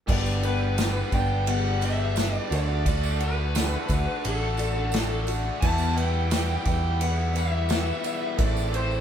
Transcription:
0.06 picked electric bass G1, twelve-string acoustic guitar G2 D3, overdriven electric guitar G3 B3 D4, upright piano G4 B4 D5, kick, crash
0.11 overdriven electric guitar G4
0.26 tambourine
0.42 overdriven electric guitar G3 B3 D4 G4, lead electric guitar B4, ride, tambourine
0.59 overdriven electric guitar B3 D4 G4
0.77 overdriven electric guitar G3 B3 D4 G4, snare, ride, tambourine
0.94 overdriven electric guitar B3 D4 G4
1.12 picked electric bass G1, overdriven electric guitar G3 B3 D4 G4, lead electric guitar G5, kick, ride, tambourine
1.46 twelve-string acoustic guitar G2 D3 G3 B3 D4 G4, lead electric guitar F#5, ride
1.65 overdriven electric guitar B3 D4 G4
1.81 overdriven electric guitar G3 B3 D4, lead electric guitar E5, ride, tambourine
1.85 overdriven electric guitar G4
1.99 overdriven electric guitar B3 D4 G4
2.15 overdriven electric guitar G3 B3 D4 G4, snare, ride, tambourine
2.35 lead electric guitar D5, tambourine
2.50 picked electric bass D2, overdriven electric guitar D3 A3 D4 F#4, upright piano F#4 A4 D5, lead electric guitar D5, ride, tambourine
2.69 overdriven electric guitar A3 D4 F#4
2.86 overdriven electric guitar D3 A3 D4 F#4, kick, ride
3.03 tambourine
3.19 overdriven electric guitar D3 A3 D4, twelve-string acoustic guitar F#4, lead electric guitar B4, ride, tambourine
3.24 overdriven electric guitar F#4
3.37 overdriven electric guitar A3 D4 F#4
3.54 overdriven electric guitar D3 A3 D4 F#4, snare, ride, tambourine
3.71 overdriven electric guitar A3 D4 F#4
3.88 picked electric bass D2, overdriven electric guitar D3 A3 D4 F#4, kick, ride, tambourine
4.24 picked electric bass A1, twelve-string acoustic guitar D3 A3 D4 F#4, lead electric guitar A4, ride
4.39 overdriven electric guitar A3 D4 F#4
4.56 overdriven electric guitar D3 A3 D4 F#4, ride, tambourine
4.73 overdriven electric guitar A3 D4 F#4
4.91 overdriven electric guitar D3 A3 D4 F#4, snare, ride, tambourine
5.10 tambourine
5.25 overdriven electric guitar D3 A3 D4 F#4, ride, tambourine
5.31 twelve-string acoustic guitar A3
5.43 overdriven electric guitar A3 D4 F#4
5.61 overdriven electric guitar E2 B2 E3 G3 B3 E4, picked electric bass E2, upright piano G4 B4 E5, lead electric guitar A5, kick, crash
5.78 tambourine
5.94 overdriven electric guitar E3 G3 B3 E4, lead electric guitar G5, ride, tambourine
5.99 twelve-string acoustic guitar E3
6.11 overdriven electric guitar E3 G3 B3 E4
6.28 overdriven electric guitar E2 B2 E3 G3 B3 E4, snare, ride, tambourine
6.48 overdriven electric guitar E3 G3 B3 E4, tambourine
6.63 picked electric bass E2, overdriven electric guitar E3 G3 B3 E4, lead electric guitar G5, kick, ride, tambourine
6.69 twelve-string acoustic guitar E3
7.01 twelve-string acoustic guitar E2 B2 E3 G3 B3 E4, lead electric guitar F#5, ride
7.16 overdriven electric guitar E3 G3 B3 E4
7.34 overdriven electric guitar E3 G3 B3 E4, lead electric guitar E5, ride, tambourine
7.51 overdriven electric guitar E3 G3 B3 E4
7.68 overdriven electric guitar E2 B2 E3 G3 B3 E4, snare, ride, tambourine
7.86 tambourine
8.03 overdriven electric guitar E3 G3 B3 E4, ride, tambourine
8.20 overdriven electric guitar E3 G3 B3 E4
8.37 picked electric bass A1, overdriven electric guitar A2 E3 A3 C4 E4, upright piano C4 A4 E5, lead electric guitar D5, kick, ride, tambourine
8.57 tambourine
8.72 overdriven electric guitar E3 A3 C4 E4, lead electric guitar C5, ride, tambourine
8.87 overdriven electric guitar A3 C4 E4, tambourine

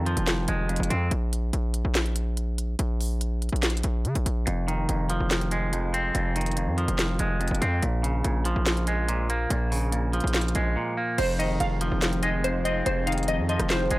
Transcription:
Already playing: 808-style bass F2, clean electric guitar F2 D#3 C4
0.06 clean electric guitar F3, closed hi-hat
0.17 808-style bass F1, closed hi-hat
0.27 snare, clap, closed hi-hat
0.48 808-style bass F1, clean electric guitar G#3, closed hi-hat
0.69 clean electric guitar F2, closed hi-hat
0.76 808-style bass F1, closed hi-hat
0.83 closed hi-hat
0.90 808-style bass F2, clean electric guitar C4, closed hi-hat
1.11 808-style bass A#1, closed hi-hat
1.33 closed hi-hat
1.53 808-style bass A#1, closed hi-hat
1.74 closed hi-hat
1.85 808-style bass A#1
1.95 snare, clap, closed hi-hat
2.06 closed hi-hat
2.16 closed hi-hat
2.37 closed hi-hat
2.58 closed hi-hat
2.79 808-style bass A#1, closed hi-hat
3.01 open hi-hat
3.21 closed hi-hat
3.42 closed hi-hat
3.49 808-style bass A#1, closed hi-hat
3.56 closed hi-hat
3.63 snare, clap, closed hi-hat
3.70 closed hi-hat
3.77 closed hi-hat
3.83 808-style bass A#1, closed hi-hat
4.05 808-style bass C#3, closed hi-hat
4.15 808-style bass A#1, closed hi-hat
4.26 808-style bass A#1, closed hi-hat
4.47 808-style bass F1, clean electric guitar F2, closed hi-hat
4.68 clean electric guitar D#3, closed hi-hat
4.89 808-style bass F1, clean electric guitar F2, closed hi-hat
5.10 clean electric guitar F3, closed hi-hat
5.20 808-style bass F1
5.31 snare, clap, closed hi-hat
5.41 closed hi-hat
5.51 clean electric guitar G#3, closed hi-hat
5.73 clean electric guitar F2, closed hi-hat
5.94 clean electric guitar C4, closed hi-hat
6.15 808-style bass F1, clean electric guitar F2, closed hi-hat
6.36 clean electric guitar D#3, closed hi-hat
6.41 closed hi-hat
6.46 closed hi-hat
6.52 closed hi-hat
6.57 clean electric guitar F2, closed hi-hat
6.67 808-style bass F2
6.78 clean electric guitar F3, closed hi-hat
6.88 808-style bass F1, closed hi-hat
6.99 snare, clap, closed hi-hat
7.19 808-style bass F1, clean electric guitar G#3, closed hi-hat
7.40 clean electric guitar F2, closed hi-hat
7.48 808-style bass F1, closed hi-hat
7.55 closed hi-hat
7.62 808-style bass F2, clean electric guitar C4, closed hi-hat
7.83 808-style bass A#1, clean electric guitar A#2, closed hi-hat
8.03 clean electric guitar C#3, closed hi-hat
8.24 808-style bass A#1, clean electric guitar A#2, closed hi-hat
8.45 clean electric guitar F3, closed hi-hat
8.56 808-style bass A#1
8.66 snare, clap, closed hi-hat
8.77 closed hi-hat
8.87 clean electric guitar G#3, closed hi-hat
9.09 clean electric guitar A#2, closed hi-hat
9.30 clean electric guitar A#3, closed hi-hat
9.50 808-style bass A#1, clean electric guitar A#2, closed hi-hat
9.71 clean electric guitar C#3, open hi-hat
9.92 clean electric guitar A#2, closed hi-hat
10.13 clean electric guitar F3, closed hi-hat
10.20 808-style bass A#1, closed hi-hat
10.27 closed hi-hat
10.34 snare, clap, closed hi-hat
10.41 closed hi-hat
10.48 closed hi-hat
10.55 808-style bass A#1, clean electric guitar G#3, closed hi-hat
10.76 clean electric guitar A#2
10.97 clean electric guitar A#3
11.18 808-style bass F1, clean electric guitar F2, analog synth pad F3 C4 D#4 G#4, synth pluck C5, closed hi-hat, crash
11.39 clean electric guitar D#3, synth pluck D#5, closed hi-hat
11.60 808-style bass F1, clean electric guitar F2, synth pluck F5, closed hi-hat
11.81 clean electric guitar F3, closed hi-hat
11.92 808-style bass F1
12.02 snare, clap, closed hi-hat
12.13 closed hi-hat
12.23 clean electric guitar G#3, synth pluck D#5, closed hi-hat
12.44 clean electric guitar F2, synth pluck C5, closed hi-hat
12.65 clean electric guitar C4, synth pluck D#5, closed hi-hat
12.86 808-style bass F1, clean electric guitar F2, synth pluck C5, closed hi-hat
13.07 clean electric guitar D#3, synth pluck F5, closed hi-hat
13.12 closed hi-hat
13.18 closed hi-hat
13.23 closed hi-hat
13.28 clean electric guitar F2, synth pluck D#5, closed hi-hat
13.39 808-style bass F2
13.49 clean electric guitar F3, synth pluck D#5, closed hi-hat
13.59 808-style bass F1, cross-stick, closed hi-hat
13.70 synth pluck C5, snare, clap, closed hi-hat
13.91 808-style bass F1, clean electric guitar G#3, closed hi-hat

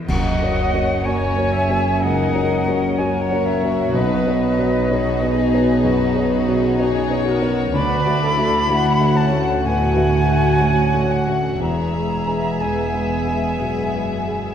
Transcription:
Already playing: grand piano B2 B3 E4 E5
0.08 double bass section F#1, cello section F#2, grand piano F#2, violin section A#3 F#4 D#5, viola section D#5, flute F#5, concert bass drum, crash
0.42 grand piano A#3 F#4 C#5
0.56 violin section C#4
0.74 grand piano A#3 F#4 C#5
1.03 grand piano A#3 F#4 C#5, violin section A#4 C#5, viola section C#5, flute G#5
1.37 grand piano A#3 F#4 C#5
1.54 violin section G#4, viola section E5
1.69 grand piano A#3 F#4 C#5
2.01 grand piano C#2, violin section D#4 A#4, viola section D#5, flute F#5
2.34 grand piano A#3 F#4 C#5
2.51 violin section C#4
2.67 grand piano A#3 F#4 C#5
2.98 grand piano A#3 F#4 C#5, violin section C#4 F#4 A#4, viola section C#5, flute G#5
3.22 flute F#5
3.31 grand piano A#3 F#4 C#5
3.46 flute E5
3.63 grand piano A#3 F#4 C#5
3.93 double bass section B1, grand piano B1, cello section B2, violin section D#4 B4, viola section B4, flute D#5
4.26 grand piano B3 F#4 C#5
4.41 violin section B4, viola section B4
4.59 grand piano B3 F#4 C#5
4.89 grand piano B3 F#4 C#5, violin section F#4, viola section G#4
5.22 grand piano B3 F#4 C#5
5.35 viola section F#4, violin section G#4
5.54 grand piano B3 F#4 C#5
5.84 grand piano F#2, violin section F#4, viola section G#4
6.15 grand piano B3 F#4 C#5
6.31 violin section F#4
6.47 grand piano B3 F#4 C#5
6.78 grand piano B3 F#4 C#5, viola section F#4, violin section G#4 C#5
7.10 grand piano B3 F#4 C#5
7.26 violin section F#4, viola section A#4
7.41 grand piano B3 F#4 C#5
7.74 grand piano D2, cello section D2, double bass section D2, violin section D4 F#4 D5, viola section B4, flute B5
8.06 grand piano A3 F#4 E5
8.23 violin section E4, viola section A4
8.37 grand piano A3 F#4 E5
8.69 grand piano A3 F#4 E5, violin section D4 F#5, viola section F#4
8.99 grand piano A3 F#4 E5
9.17 violin section C#4, flute A5
9.31 grand piano A3 F#4 E5
9.64 grand piano A2, violin section B3 F#4 F#5, flute G#5
9.96 grand piano A3 F#4 E5
10.14 violin section A3
10.28 grand piano A3 F#4 E5
10.60 grand piano A3 F#4 E5, violin section C#4
10.94 grand piano A3 F#4 E5
11.11 flute F#5
11.28 grand piano A3 F#4 E5
11.60 double bass section E1, grand piano E2, cello section E2, violin section B3 G#4 E5, viola section G#4, flute A#5
11.94 grand piano G#3 G#4 E5
12.27 grand piano G#3 G#4 E5
12.61 cello section E2, grand piano G#3 G#4 E5, flute G#5
12.93 grand piano G#3 G#4 E5
13.27 grand piano G#3 G#4 E5
13.60 cello section F#2, grand piano B2
13.92 grand piano G#3 G#4 E5
14.28 grand piano G#3 G#4 E5

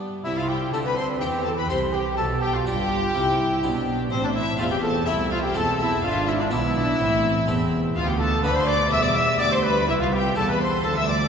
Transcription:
Already playing: harpsichord G3 B3 D4, cello section G3
0.24 double bass section C2, cello section C3, harpsichord C3, trumpet E4, viola section E4, violin section E4 E5
0.37 trumpet F4, violin section F4 F5
0.48 trumpet G4, violin section G4 G5
0.72 double bass section D2, cello section D3, harpsichord D3 C4 E4, viola section C4, trumpet A4, violin section A4 A5
0.84 trumpet B4, violin section B4 B5
0.96 trumpet C5, violin section C5 C6
1.19 double bass section E2, harpsichord E3 C4 E4, cello section E3, trumpet G4, violin section G4 G5
1.44 trumpet A4, violin section A4 A5
1.56 trumpet B4, violin section B4 B5
1.69 double bass section C2, harpsichord C3 C4 E4, cello section C3, viola section G4, trumpet C5, violin section C5 C6
1.93 trumpet G4, violin section G4 G5
2.16 double bass section B1, harpsichord B2, cello section B2, violin section A4 A5, trumpet A4
2.41 violin section G4 G5, trumpet G4
2.52 violin section F4 F5, trumpet F4
2.65 double bass section G1, harpsichord G2 D4 F4, cello section G2, viola section F4, violin section G4 G5, trumpet G4
3.14 double bass section C2, cello section C3, harpsichord C3, viola section E4
3.63 double bass section B1, cello section B2, harpsichord B2 C4 E4, viola section D4
4.10 double bass section A1, harpsichord A2, cello section A2, violin section C4 C5, viola section C4, trumpet C4
4.22 violin section D4 D5, trumpet D4
4.34 violin section E4 E5, trumpet E4
4.58 double bass section E1, harpsichord E2 A3 C4 E4, cello section E2, viola section C4, trumpet F4, violin section F4 F5
4.70 trumpet G4, violin section G4 G5
4.82 violin section A4 A5, trumpet A4
5.06 double bass section C2, harpsichord C2 A3 C4 E4, cello section C2, trumpet E4, violin section E4 E5
5.29 trumpet F4, violin section F4 F5
5.43 trumpet G4, violin section G4 G5
5.54 double bass section E1, harpsichord E2 A3 C4 E4, cello section E2, trumpet A4, violin section A4 A5
5.78 violin section E4 E5, trumpet E4
6.03 double bass section G#1, harpsichord G#2, cello section G#2, viola section D4, violin section F4 F5, trumpet F4
6.27 trumpet E4, violin section E4 E5
6.39 violin section D4 D5, trumpet D4
6.51 double bass section B1, harpsichord B2 B3 D4 E4, cello section B2, viola section E4, violin section E4 E5, trumpet E4
6.76 viola section D4
6.99 double bass section A1, harpsichord A2, cello section A2, viola section C4
7.47 double bass section E1, harpsichord E2 A3 C4 E4, cello section E2, viola section C4
7.95 double bass section D2, cello section D2, harpsichord D2, viola section B3, trumpet F4, violin section F4 F5
8.07 violin section G4 G5, trumpet G4
8.19 violin section A4 A5, trumpet A4
8.43 double bass section D2, harpsichord D3 B3 D4, cello section D3, viola section A3, violin section B4 B5, trumpet B4
8.54 violin section C5 C6, trumpet C5
8.66 violin section D5 D6, trumpet D5
8.90 double bass section E1, harpsichord E2, cello section E2, viola section G3, violin section E5 E6, trumpet E5
9.02 trumpet D5, violin section D5 D6
9.13 violin section E5, trumpet E5
9.18 violin section E6
9.38 harpsichord D2 B3 E4 G4, cello section D2, double bass section D2, violin section D5 D6, trumpet D5
9.52 trumpet C5, violin section C5 C6
9.63 trumpet B4, violin section B4 B5
9.87 harpsichord C2, double bass section C2, cello section C2, violin section E4 E5, trumpet E4
9.99 violin section F4 F5, trumpet F4
10.13 violin section G4 G5, trumpet G4
10.35 double bass section E1, harpsichord E2 A3 E4 A4, cello section E2, trumpet A4, violin section A4 A5
10.49 trumpet B4, violin section B4 B5
10.61 trumpet C5, violin section C5 C6
10.84 double bass section D2, harpsichord D2, cello section D2, viola section F3, trumpet A4, violin section A4 A5
10.96 trumpet E5, violin section E5 E6
11.08 trumpet D5, violin section D5 D6

